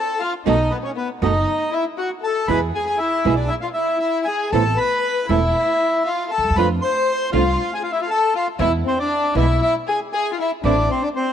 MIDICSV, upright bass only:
0, 0, Header, 1, 2, 480
1, 0, Start_track
1, 0, Key_signature, 0, "minor"
1, 0, Tempo, 509338
1, 432, Time_signature, 4, 2, 24, 8
1, 10675, End_track
2, 0, Start_track
2, 0, Title_t, "Upright bass"
2, 0, Program_c, 0, 32
2, 438, Note_on_c, 0, 35, 79
2, 635, Note_off_c, 0, 35, 0
2, 1149, Note_on_c, 0, 30, 81
2, 1348, Note_off_c, 0, 30, 0
2, 2340, Note_on_c, 0, 40, 79
2, 2541, Note_off_c, 0, 40, 0
2, 3063, Note_on_c, 0, 35, 80
2, 3263, Note_off_c, 0, 35, 0
2, 4265, Note_on_c, 0, 33, 74
2, 4468, Note_off_c, 0, 33, 0
2, 4988, Note_on_c, 0, 28, 79
2, 5191, Note_off_c, 0, 28, 0
2, 6013, Note_on_c, 0, 38, 42
2, 6067, Note_off_c, 0, 38, 0
2, 6072, Note_on_c, 0, 39, 47
2, 6119, Note_off_c, 0, 39, 0
2, 6124, Note_on_c, 0, 40, 60
2, 6176, Note_off_c, 0, 40, 0
2, 6181, Note_on_c, 0, 41, 80
2, 6387, Note_off_c, 0, 41, 0
2, 6908, Note_on_c, 0, 36, 83
2, 7110, Note_off_c, 0, 36, 0
2, 8096, Note_on_c, 0, 40, 85
2, 8301, Note_off_c, 0, 40, 0
2, 8812, Note_on_c, 0, 35, 82
2, 9019, Note_off_c, 0, 35, 0
2, 10024, Note_on_c, 0, 33, 79
2, 10229, Note_off_c, 0, 33, 0
2, 10675, End_track
0, 0, End_of_file